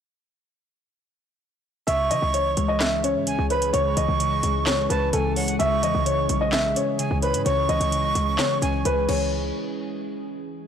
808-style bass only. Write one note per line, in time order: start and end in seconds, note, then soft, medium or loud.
1.88 2.12 C#2 loud
2.11 2.22 C#3 loud
2.22 2.56 C#2 loud
2.57 3.17 C#2 loud
3.15 3.29 G#2 loud
3.27 3.38 C#2 loud
3.39 3.72 C#2 loud
3.74 3.96 C#2 loud
3.97 4.08 C#2 loud
4.08 4.42 C#2 loud
4.43 4.88 C#2 loud
4.90 5.12 C#2 loud
5.13 5.58 C#2 loud
5.60 5.84 C#2 loud
5.83 5.94 E2 loud
5.95 6.28 C#2 loud
6.30 6.74 B1 loud
7.11 7.36 C#2 loud
7.34 7.45 G#2 loud
7.46 7.68 C#2 loud
7.69 7.80 C#2 loud
7.81 8.14 C#2 loud
8.15 8.38 C#2 loud
8.62 8.84 C#2 loud
8.85 9.08 C#2 loud
9.09 9.52 C#2 loud